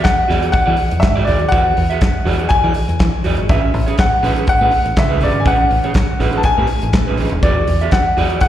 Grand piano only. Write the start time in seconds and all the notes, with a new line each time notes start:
0.04 F#5
0.52 F#5
1.00 E5
1.25 D5
1.49 F#5
2.49 G#5
3.50 E5
4.00 F#5
4.49 F#5
4.99 E5
5.23 D5
5.40 G#5
5.47 F#5
6.37 A5
6.45 G#5
7.43 D5
7.93 F#5
8.41 F#5